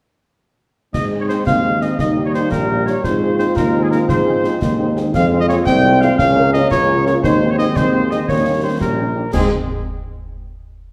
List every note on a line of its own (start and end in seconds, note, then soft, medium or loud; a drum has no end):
0.94 1.38 G#2 medium
0.94 1.95 G#3 medium
0.94 1.95 C4 medium
0.94 1.43 D#4 medium
0.94 1.06 D#5 medium
0.94 concert bass drum medium
0.94 snare medium
0.94 crash soft
1.11 1.18 C4 medium
1.11 1.18 D#4 soft
1.11 1.18 G#4 soft
1.20 1.24 C#5 medium
1.28 1.36 C4 medium
1.28 1.36 D#4 soft
1.28 1.36 G#4 medium
1.28 1.45 C5 medium
1.28 1.37 C5 medium
1.28 snare soft
1.46 1.90 D#2 medium
1.46 1.95 C4 medium
1.46 1.83 F5 medium
1.46 1.79 F5 medium
1.46 concert bass drum medium
1.46 snare medium
1.65 1.71 C4 soft
1.65 1.71 D#4 soft
1.65 1.71 G#4 soft
1.81 1.88 C4 soft
1.81 1.88 D#4 soft
1.81 1.88 G#4 soft
1.81 1.99 D#5 medium
1.81 1.90 D#5 medium
1.81 snare soft
1.99 2.43 D#2 medium
1.99 3.04 G3 medium
1.99 3.04 A#3 medium
1.99 2.48 D#4 medium
1.99 2.23 D#5 medium
1.99 2.11 D#5 medium
1.99 concert bass drum medium
1.99 snare medium
2.16 2.23 A#3 soft
2.16 2.23 D#4 medium
2.16 2.23 G4 soft
2.25 2.29 C#5 medium
2.25 2.30 C#5 medium
2.34 2.41 A#3 medium
2.34 2.41 D#4 medium
2.34 2.41 G4 medium
2.34 2.50 C5 medium
2.34 snare soft
2.51 2.95 A#1 medium
2.51 3.00 G4 medium
2.51 2.84 A#4 medium
2.51 2.88 A#4 medium
2.51 concert bass drum medium
2.51 snare medium
2.69 2.75 A#3 soft
2.69 2.75 D#4 soft
2.69 2.76 G4 medium
2.86 2.93 A#3 soft
2.86 2.93 D#4 soft
2.86 2.93 G4 medium
2.86 2.94 C#5 medium
2.86 3.06 C#5 medium
2.86 snare soft
3.03 3.48 G#2 medium
3.03 5.14 G#3 medium
3.03 5.10 C4 medium
3.03 4.63 F4 medium
3.03 3.36 C5 medium
3.03 3.38 C5 medium
3.03 concert bass drum medium
3.03 snare medium
3.22 3.28 C4 medium
3.22 3.28 D#4 medium
3.22 3.28 G#4 medium
3.39 3.45 C4 medium
3.39 3.45 D#4 medium
3.39 3.45 G#4 medium
3.39 3.58 C5 medium
3.39 3.47 C5 medium
3.39 snare soft
3.56 4.00 D#2 medium
3.56 3.68 A#4 medium
3.56 3.84 A#4 medium
3.56 concert bass drum medium
3.56 snare medium
3.74 3.80 C4 medium
3.74 3.80 D#4 medium
3.74 3.80 G#4 medium
3.82 3.86 G#4 medium
3.82 3.92 G#4 medium
3.91 3.98 C4 medium
3.91 3.98 D#4 medium
3.91 3.98 G#4 medium
3.91 4.08 A#4 medium
3.91 3.99 A#4 medium
3.91 snare soft
4.09 4.53 G#2 medium
4.09 4.92 C5 medium
4.09 concert bass drum medium
4.09 snare medium
4.26 4.33 C4 medium
4.26 4.33 D#4 medium
4.26 4.33 G#4 medium
4.43 4.50 C4 medium
4.43 4.50 D#4 medium
4.43 4.50 G#4 medium
4.43 snare soft
4.62 5.05 D#2 medium
4.62 5.15 D#4 medium
4.62 concert bass drum medium
4.62 snare medium
4.79 4.85 C4 medium
4.79 4.85 D#4 medium
4.79 4.85 G#4 medium
4.96 5.03 C4 medium
4.96 5.03 D#4 medium
4.96 5.02 G#4 medium
4.96 snare soft
5.14 5.58 F2 medium
5.14 6.15 G#3 medium
5.14 6.15 C4 medium
5.14 5.66 F4 medium
5.14 5.38 F5 medium
5.14 5.26 F5 loud
5.14 concert bass drum medium
5.14 snare medium
5.14 crash soft
5.31 5.38 C4 medium
5.31 5.38 F4 medium
5.31 5.38 G#4 medium
5.40 5.49 D#5 medium
5.40 5.44 D#5 loud
5.48 5.55 C4 medium
5.48 5.55 F4 medium
5.48 5.55 G#4 medium
5.48 5.57 C#5 medium
5.48 snare soft
5.66 6.10 C2 medium
5.66 6.15 C4 medium
5.66 6.02 G5 loud
5.66 5.98 G5 loud
5.66 concert bass drum medium
5.66 snare medium
5.84 5.90 C4 medium
5.84 5.90 F4 medium
5.84 5.90 G#4 medium
6.01 6.08 C4 medium
6.01 6.08 F4 medium
6.01 6.08 G#4 medium
6.01 6.17 F5 medium
6.01 snare soft
6.18 6.62 C#2 medium
6.18 7.23 A#3 medium
6.18 7.23 C#4 medium
6.18 6.73 C#4 medium
6.18 6.51 F5 loud
6.18 6.51 F5 medium
6.18 concert bass drum medium
6.18 snare medium
6.36 6.43 C#4 medium
6.36 6.43 F4 medium
6.36 6.42 A#4 medium
6.53 6.60 C#4 medium
6.53 6.60 F4 medium
6.53 6.60 A#4 medium
6.53 6.70 D#5 loud
6.53 6.71 D#5 medium
6.53 snare soft
6.71 7.15 C#2 medium
6.71 7.23 F4 medium
6.71 7.04 C#5 loud
6.71 7.04 C#5 medium
6.71 concert bass drum medium
6.71 snare medium
6.89 6.95 C#4 medium
6.89 6.95 F4 medium
6.89 6.95 A#4 medium
7.06 7.13 C#4 medium
7.06 7.13 F4 medium
7.06 7.13 A#4 medium
7.06 7.14 C#5 medium
7.06 snare soft
7.22 7.67 D#2 medium
7.22 8.28 G#3 medium
7.22 8.28 C4 medium
7.22 7.55 D#4 medium
7.22 7.47 C5 medium
7.22 7.52 C5 medium
7.22 concert bass drum medium
7.22 snare medium
7.41 7.47 C4 medium
7.41 7.48 D#4 medium
7.41 7.47 G#4 medium
7.50 7.58 C#5 medium
7.58 7.65 C4 medium
7.58 7.65 D#4 medium
7.58 7.65 G#4 medium
7.58 7.78 D#5 medium
7.58 7.66 D#5 medium
7.58 snare soft
7.76 8.20 D#2 medium
7.76 8.25 C4 medium
7.76 8.09 C5 medium
7.76 8.11 C5 medium
7.76 concert bass drum medium
7.76 snare medium
7.94 8.00 C4 medium
7.94 8.00 D#4 medium
7.94 8.00 G#4 medium
8.11 8.17 C4 medium
8.11 8.18 D#4 medium
8.11 8.18 G#4 medium
8.11 8.29 D#5 medium
8.11 8.19 D#5 medium
8.11 snare soft
8.28 8.68 D#2 medium
8.28 9.17 G3 medium
8.28 8.77 A#3 medium
8.28 9.17 C#4 medium
8.28 8.61 C#5 medium
8.28 concert bass drum medium
8.28 snare medium
8.46 8.52 C#4 medium
8.46 8.52 D#4 medium
8.46 8.52 G4 medium
8.63 8.70 C#4 medium
8.63 8.70 D#4 soft
8.63 8.70 G4 medium
8.63 8.81 C5 medium
8.63 8.80 C5 medium
8.81 9.25 A#1 medium
8.81 9.05 G4 medium
8.81 9.30 A#4 medium
8.81 concert bass drum medium
8.81 snare medium
8.98 9.04 C#4 soft
8.98 9.05 D#4 soft
8.98 9.05 G4 soft
9.15 9.22 C#4 soft
9.15 9.22 D#4 soft
9.15 9.22 G4 soft
9.33 9.48 G#2 medium
9.33 9.49 G#3 medium
9.33 9.48 C4 medium
9.33 9.49 C4 medium
9.33 9.48 D#4 medium
9.33 9.48 G#4 medium
9.33 concert bass drum medium
9.33 snare medium
9.33 crash medium